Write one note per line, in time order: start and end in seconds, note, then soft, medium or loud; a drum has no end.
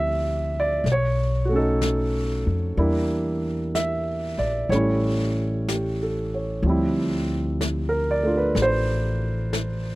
0.00 0.80 D2 medium
0.00 0.84 F3 soft
0.00 0.85 G3 soft
0.00 0.85 C4 soft
0.00 0.85 E4 medium
0.00 0.51 E5 medium
0.60 0.88 D5 medium
0.84 2.42 B1 medium
0.84 brush sweep soft
0.84 snare soft
0.92 1.55 C#5 medium
1.45 2.77 A3 soft
1.45 2.75 F#4 soft
1.53 2.79 C#4 soft
1.53 2.45 A4 medium
1.57 2.81 D#4 medium
1.81 brush sweep soft
1.81 snare soft
1.81 hi-hat pedal medium
2.47 2.75 F2 medium
2.77 4.35 E2 medium
2.77 4.68 G3 soft
2.77 4.70 A#3 soft
2.77 4.70 D4 soft
2.77 4.71 E4 medium
2.77 brush sweep soft
3.75 4.42 E5 medium
3.75 brush sweep soft
3.75 snare soft
3.75 hi-hat pedal medium
4.38 4.67 A#1 soft
4.38 4.68 D5 medium
4.69 6.59 A1 medium
4.69 6.63 G3 soft
4.69 6.65 A3 soft
4.69 6.65 C#4 soft
4.69 6.29 C#5 medium
4.69 brush sweep soft
4.69 snare soft
4.75 6.66 E4 soft
5.68 6.29 G4 soft
5.68 brush sweep soft
5.68 snare soft
5.68 hi-hat pedal soft
6.03 6.51 A4 soft
6.34 6.83 C#5 soft
6.62 8.52 D2 medium
6.62 9.95 F3 soft
6.62 9.95 G3 soft
6.62 brush sweep soft
6.68 9.95 C4 soft
6.68 9.95 E4 medium
7.61 brush sweep soft
7.61 snare soft
7.61 hi-hat pedal medium
7.89 8.22 A#4 medium
8.11 8.33 D5 medium
8.23 9.95 A3 soft
8.23 9.95 D4 soft
8.23 9.95 F4 soft
8.37 8.54 B4 medium
8.55 9.95 A1 medium
8.55 brush sweep soft
8.55 snare soft
8.62 9.00 C5 medium
9.53 brush sweep soft
9.53 snare soft
9.53 hi-hat pedal soft